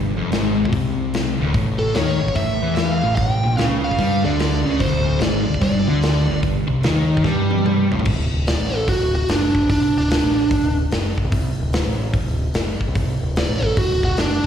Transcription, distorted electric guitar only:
Already playing: G2
0.16 F2
0.32 G#2
0.71 C3
1.40 D2
1.54 A2
1.95 D#3
2.22 A2
2.35 A2
2.62 E3
3.02 A2
3.43 A#2
3.58 C#3
3.99 G3
4.25 D3
4.66 C#3
4.80 D2
5.20 G#2
5.47 D2
5.60 G2
5.87 D3
6.28 G2
6.69 C3
6.84 D#3
7.24 G3
7.91 A2

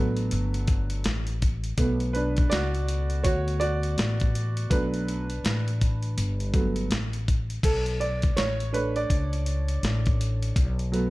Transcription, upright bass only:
Already playing: A1
0.32 G1
1.05 A1
1.78 B1
2.51 C#2
3.25 D2
3.98 A1
4.71 B1
5.44 A1
6.17 G1
6.90 A1
7.63 B1
8.37 A1
9.10 C#2
9.83 A1
10.56 B1

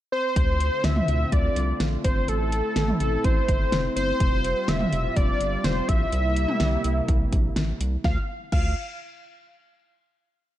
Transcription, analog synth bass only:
0.36 D2
0.84 D2
1.08 D2
1.32 D2
1.56 C2
1.80 A#1
2.05 G1
2.28 A1
2.76 A1
3.00 A1
3.24 A1
3.48 G1
3.72 F1
3.96 G1
4.20 F1
4.68 F1
4.92 F1
5.17 F1
5.40 G1
5.64 F1
5.89 A#1
6.12 C2
6.60 C2
6.84 C2
7.08 C2
7.33 A#1
7.56 A1
7.80 C2
8.04 D2
8.52 D2

